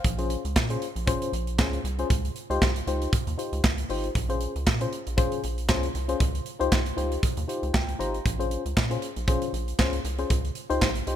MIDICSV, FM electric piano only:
0, 0, Header, 1, 2, 480
1, 0, Start_track
1, 0, Tempo, 512821
1, 44, Time_signature, 4, 2, 24, 8
1, 10444, End_track
2, 0, Start_track
2, 0, Title_t, "FM electric piano"
2, 0, Program_c, 0, 5
2, 0, Note_on_c, 0, 72, 55
2, 0, Note_on_c, 0, 77, 68
2, 164, Note_off_c, 0, 72, 0
2, 164, Note_off_c, 0, 77, 0
2, 169, Note_on_c, 0, 61, 84
2, 171, Note_on_c, 0, 65, 76
2, 174, Note_on_c, 0, 68, 81
2, 176, Note_on_c, 0, 72, 86
2, 395, Note_off_c, 0, 61, 0
2, 396, Note_off_c, 0, 65, 0
2, 398, Note_off_c, 0, 68, 0
2, 399, Note_off_c, 0, 72, 0
2, 652, Note_on_c, 0, 61, 75
2, 654, Note_on_c, 0, 65, 72
2, 656, Note_on_c, 0, 68, 69
2, 658, Note_on_c, 0, 72, 89
2, 814, Note_off_c, 0, 61, 0
2, 815, Note_off_c, 0, 65, 0
2, 816, Note_off_c, 0, 68, 0
2, 817, Note_off_c, 0, 72, 0
2, 998, Note_on_c, 0, 61, 96
2, 1003, Note_on_c, 0, 65, 83
2, 1004, Note_on_c, 0, 68, 83
2, 1008, Note_on_c, 0, 72, 107
2, 1227, Note_off_c, 0, 61, 0
2, 1229, Note_off_c, 0, 65, 0
2, 1230, Note_off_c, 0, 68, 0
2, 1232, Note_off_c, 0, 72, 0
2, 1484, Note_on_c, 0, 61, 93
2, 1485, Note_on_c, 0, 65, 81
2, 1490, Note_on_c, 0, 68, 76
2, 1491, Note_on_c, 0, 72, 89
2, 1660, Note_off_c, 0, 61, 0
2, 1661, Note_off_c, 0, 65, 0
2, 1664, Note_off_c, 0, 68, 0
2, 1664, Note_off_c, 0, 72, 0
2, 1858, Note_on_c, 0, 61, 84
2, 1862, Note_on_c, 0, 65, 75
2, 1865, Note_on_c, 0, 68, 83
2, 1867, Note_on_c, 0, 72, 94
2, 1964, Note_off_c, 0, 61, 0
2, 1966, Note_off_c, 0, 65, 0
2, 1967, Note_off_c, 0, 68, 0
2, 1968, Note_off_c, 0, 72, 0
2, 2339, Note_on_c, 0, 63, 97
2, 2341, Note_on_c, 0, 65, 91
2, 2342, Note_on_c, 0, 67, 92
2, 2344, Note_on_c, 0, 72, 110
2, 2498, Note_off_c, 0, 63, 0
2, 2499, Note_off_c, 0, 65, 0
2, 2499, Note_off_c, 0, 67, 0
2, 2500, Note_off_c, 0, 72, 0
2, 2687, Note_on_c, 0, 63, 84
2, 2689, Note_on_c, 0, 65, 78
2, 2692, Note_on_c, 0, 67, 81
2, 2695, Note_on_c, 0, 72, 99
2, 2911, Note_off_c, 0, 63, 0
2, 2912, Note_off_c, 0, 65, 0
2, 2913, Note_off_c, 0, 67, 0
2, 2915, Note_off_c, 0, 72, 0
2, 3159, Note_on_c, 0, 63, 81
2, 3163, Note_on_c, 0, 65, 75
2, 3165, Note_on_c, 0, 67, 67
2, 3169, Note_on_c, 0, 72, 87
2, 3387, Note_off_c, 0, 63, 0
2, 3389, Note_off_c, 0, 65, 0
2, 3390, Note_off_c, 0, 67, 0
2, 3392, Note_off_c, 0, 72, 0
2, 3646, Note_on_c, 0, 63, 82
2, 3646, Note_on_c, 0, 65, 81
2, 3650, Note_on_c, 0, 67, 80
2, 3653, Note_on_c, 0, 72, 97
2, 3821, Note_off_c, 0, 63, 0
2, 3822, Note_off_c, 0, 65, 0
2, 3823, Note_off_c, 0, 67, 0
2, 3825, Note_off_c, 0, 72, 0
2, 4015, Note_on_c, 0, 61, 80
2, 4019, Note_on_c, 0, 65, 72
2, 4022, Note_on_c, 0, 68, 74
2, 4022, Note_on_c, 0, 72, 96
2, 4239, Note_off_c, 0, 61, 0
2, 4240, Note_off_c, 0, 65, 0
2, 4242, Note_off_c, 0, 68, 0
2, 4242, Note_off_c, 0, 72, 0
2, 4497, Note_on_c, 0, 61, 76
2, 4500, Note_on_c, 0, 65, 73
2, 4504, Note_on_c, 0, 68, 65
2, 4505, Note_on_c, 0, 72, 91
2, 4657, Note_off_c, 0, 61, 0
2, 4658, Note_off_c, 0, 65, 0
2, 4661, Note_off_c, 0, 68, 0
2, 4661, Note_off_c, 0, 72, 0
2, 4839, Note_on_c, 0, 61, 88
2, 4841, Note_on_c, 0, 65, 90
2, 4841, Note_on_c, 0, 68, 93
2, 4846, Note_on_c, 0, 72, 106
2, 5067, Note_off_c, 0, 61, 0
2, 5068, Note_off_c, 0, 65, 0
2, 5068, Note_off_c, 0, 68, 0
2, 5071, Note_off_c, 0, 72, 0
2, 5325, Note_on_c, 0, 61, 87
2, 5325, Note_on_c, 0, 65, 78
2, 5328, Note_on_c, 0, 68, 83
2, 5331, Note_on_c, 0, 72, 101
2, 5501, Note_off_c, 0, 61, 0
2, 5501, Note_off_c, 0, 65, 0
2, 5503, Note_off_c, 0, 68, 0
2, 5504, Note_off_c, 0, 72, 0
2, 5694, Note_on_c, 0, 61, 94
2, 5697, Note_on_c, 0, 65, 82
2, 5700, Note_on_c, 0, 68, 80
2, 5702, Note_on_c, 0, 72, 100
2, 5802, Note_off_c, 0, 61, 0
2, 5803, Note_off_c, 0, 65, 0
2, 5805, Note_off_c, 0, 68, 0
2, 5806, Note_off_c, 0, 72, 0
2, 6172, Note_on_c, 0, 63, 98
2, 6174, Note_on_c, 0, 65, 86
2, 6177, Note_on_c, 0, 67, 94
2, 6182, Note_on_c, 0, 72, 111
2, 6334, Note_off_c, 0, 63, 0
2, 6335, Note_off_c, 0, 65, 0
2, 6337, Note_off_c, 0, 67, 0
2, 6339, Note_off_c, 0, 72, 0
2, 6519, Note_on_c, 0, 63, 85
2, 6520, Note_on_c, 0, 65, 82
2, 6524, Note_on_c, 0, 67, 82
2, 6526, Note_on_c, 0, 72, 94
2, 6747, Note_off_c, 0, 63, 0
2, 6748, Note_off_c, 0, 65, 0
2, 6750, Note_off_c, 0, 67, 0
2, 6751, Note_off_c, 0, 72, 0
2, 6997, Note_on_c, 0, 63, 80
2, 7001, Note_on_c, 0, 65, 77
2, 7003, Note_on_c, 0, 67, 79
2, 7007, Note_on_c, 0, 72, 82
2, 7226, Note_off_c, 0, 63, 0
2, 7228, Note_off_c, 0, 65, 0
2, 7229, Note_off_c, 0, 67, 0
2, 7231, Note_off_c, 0, 72, 0
2, 7239, Note_on_c, 0, 79, 73
2, 7465, Note_off_c, 0, 79, 0
2, 7479, Note_on_c, 0, 63, 84
2, 7481, Note_on_c, 0, 65, 82
2, 7482, Note_on_c, 0, 67, 82
2, 7482, Note_on_c, 0, 82, 73
2, 7485, Note_on_c, 0, 72, 100
2, 7658, Note_off_c, 0, 63, 0
2, 7659, Note_off_c, 0, 65, 0
2, 7659, Note_off_c, 0, 67, 0
2, 7661, Note_off_c, 0, 72, 0
2, 7706, Note_off_c, 0, 82, 0
2, 7853, Note_on_c, 0, 61, 81
2, 7856, Note_on_c, 0, 65, 78
2, 7858, Note_on_c, 0, 68, 73
2, 7860, Note_on_c, 0, 72, 93
2, 8077, Note_off_c, 0, 61, 0
2, 8079, Note_off_c, 0, 65, 0
2, 8080, Note_off_c, 0, 68, 0
2, 8081, Note_off_c, 0, 72, 0
2, 8329, Note_on_c, 0, 61, 80
2, 8334, Note_on_c, 0, 65, 72
2, 8337, Note_on_c, 0, 68, 73
2, 8340, Note_on_c, 0, 72, 83
2, 8493, Note_off_c, 0, 61, 0
2, 8495, Note_off_c, 0, 65, 0
2, 8497, Note_off_c, 0, 68, 0
2, 8498, Note_off_c, 0, 72, 0
2, 8680, Note_on_c, 0, 65, 88
2, 8681, Note_on_c, 0, 61, 93
2, 8685, Note_on_c, 0, 68, 86
2, 8687, Note_on_c, 0, 72, 99
2, 8908, Note_off_c, 0, 61, 0
2, 8908, Note_off_c, 0, 65, 0
2, 8910, Note_off_c, 0, 68, 0
2, 8911, Note_off_c, 0, 72, 0
2, 9159, Note_on_c, 0, 61, 88
2, 9164, Note_on_c, 0, 65, 76
2, 9165, Note_on_c, 0, 68, 84
2, 9168, Note_on_c, 0, 72, 97
2, 9338, Note_off_c, 0, 61, 0
2, 9340, Note_off_c, 0, 65, 0
2, 9341, Note_off_c, 0, 68, 0
2, 9342, Note_off_c, 0, 72, 0
2, 9533, Note_on_c, 0, 61, 86
2, 9534, Note_on_c, 0, 65, 78
2, 9537, Note_on_c, 0, 68, 80
2, 9539, Note_on_c, 0, 72, 97
2, 9641, Note_off_c, 0, 61, 0
2, 9642, Note_off_c, 0, 65, 0
2, 9643, Note_off_c, 0, 68, 0
2, 9644, Note_off_c, 0, 72, 0
2, 10011, Note_on_c, 0, 63, 102
2, 10014, Note_on_c, 0, 65, 89
2, 10014, Note_on_c, 0, 67, 92
2, 10017, Note_on_c, 0, 72, 115
2, 10174, Note_off_c, 0, 63, 0
2, 10175, Note_off_c, 0, 67, 0
2, 10176, Note_off_c, 0, 65, 0
2, 10177, Note_off_c, 0, 72, 0
2, 10362, Note_on_c, 0, 63, 86
2, 10362, Note_on_c, 0, 65, 82
2, 10365, Note_on_c, 0, 67, 78
2, 10368, Note_on_c, 0, 72, 96
2, 10444, Note_off_c, 0, 63, 0
2, 10444, Note_off_c, 0, 65, 0
2, 10444, Note_off_c, 0, 67, 0
2, 10444, Note_off_c, 0, 72, 0
2, 10444, End_track
0, 0, End_of_file